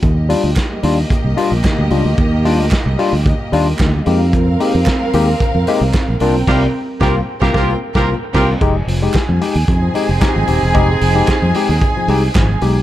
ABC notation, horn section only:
X:1
M:4/4
L:1/16
Q:1/4=112
K:Fdor
V:1 name="Horn section"
z16 | z16 | z16 | [FGB]2 z2 [FGB]2 z [FGB] [FGB]2 z [FGB]2 z [FGB]2 |
z8 [CEA]8- | [CEA]12- [CEA]2 z2 |]